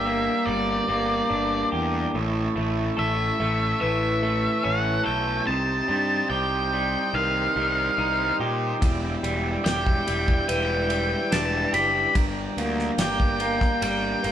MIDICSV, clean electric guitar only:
0, 0, Header, 1, 2, 480
1, 0, Start_track
1, 0, Tempo, 834492
1, 1232, Time_signature, 4, 2, 24, 8
1, 8235, End_track
2, 0, Start_track
2, 0, Title_t, "Clean electric guitar"
2, 0, Program_c, 0, 27
2, 0, Note_on_c, 0, 43, 69
2, 0, Note_on_c, 0, 67, 68
2, 36, Note_on_c, 0, 58, 69
2, 269, Note_on_c, 0, 55, 72
2, 501, Note_off_c, 0, 58, 0
2, 508, Note_off_c, 0, 43, 0
2, 508, Note_on_c, 0, 58, 68
2, 746, Note_on_c, 0, 62, 70
2, 982, Note_off_c, 0, 67, 0
2, 989, Note_on_c, 0, 67, 75
2, 1229, Note_off_c, 0, 62, 0
2, 1230, Note_off_c, 0, 58, 0
2, 1230, Note_off_c, 0, 67, 0
2, 1231, Note_off_c, 0, 55, 0
2, 1237, Note_on_c, 0, 45, 72
2, 1470, Note_on_c, 0, 57, 59
2, 1707, Note_on_c, 0, 69, 72
2, 1948, Note_off_c, 0, 57, 0
2, 1955, Note_on_c, 0, 57, 72
2, 2187, Note_on_c, 0, 52, 73
2, 2424, Note_off_c, 0, 57, 0
2, 2431, Note_on_c, 0, 57, 70
2, 2435, Note_off_c, 0, 45, 0
2, 2664, Note_on_c, 0, 61, 65
2, 2889, Note_off_c, 0, 69, 0
2, 2896, Note_on_c, 0, 69, 77
2, 3144, Note_off_c, 0, 69, 0
2, 3144, Note_on_c, 0, 48, 68
2, 3147, Note_off_c, 0, 61, 0
2, 3149, Note_off_c, 0, 52, 0
2, 3151, Note_off_c, 0, 57, 0
2, 3381, Note_on_c, 0, 55, 65
2, 3625, Note_on_c, 0, 67, 73
2, 3870, Note_off_c, 0, 55, 0
2, 3872, Note_on_c, 0, 55, 70
2, 4108, Note_on_c, 0, 51, 70
2, 4346, Note_off_c, 0, 55, 0
2, 4347, Note_off_c, 0, 48, 0
2, 4348, Note_on_c, 0, 55, 62
2, 4591, Note_on_c, 0, 63, 67
2, 4832, Note_off_c, 0, 67, 0
2, 4834, Note_on_c, 0, 67, 71
2, 5068, Note_off_c, 0, 51, 0
2, 5069, Note_on_c, 0, 40, 66
2, 5071, Note_off_c, 0, 63, 0
2, 5309, Note_off_c, 0, 55, 0
2, 5311, Note_on_c, 0, 55, 64
2, 5552, Note_off_c, 0, 67, 0
2, 5554, Note_on_c, 0, 67, 75
2, 5786, Note_off_c, 0, 55, 0
2, 5793, Note_on_c, 0, 55, 69
2, 6028, Note_on_c, 0, 52, 73
2, 6266, Note_off_c, 0, 55, 0
2, 6268, Note_off_c, 0, 40, 0
2, 6273, Note_on_c, 0, 55, 69
2, 6508, Note_on_c, 0, 62, 72
2, 6740, Note_off_c, 0, 67, 0
2, 6747, Note_on_c, 0, 67, 75
2, 6988, Note_off_c, 0, 52, 0
2, 6988, Note_off_c, 0, 62, 0
2, 6988, Note_off_c, 0, 67, 0
2, 6988, Note_on_c, 0, 43, 69
2, 6990, Note_off_c, 0, 55, 0
2, 7235, Note_on_c, 0, 58, 60
2, 7470, Note_on_c, 0, 67, 71
2, 7706, Note_off_c, 0, 58, 0
2, 7713, Note_on_c, 0, 58, 66
2, 7949, Note_on_c, 0, 55, 75
2, 8180, Note_off_c, 0, 58, 0
2, 8187, Note_on_c, 0, 58, 67
2, 8188, Note_off_c, 0, 43, 0
2, 8235, Note_off_c, 0, 55, 0
2, 8235, Note_off_c, 0, 58, 0
2, 8235, Note_off_c, 0, 67, 0
2, 8235, End_track
0, 0, End_of_file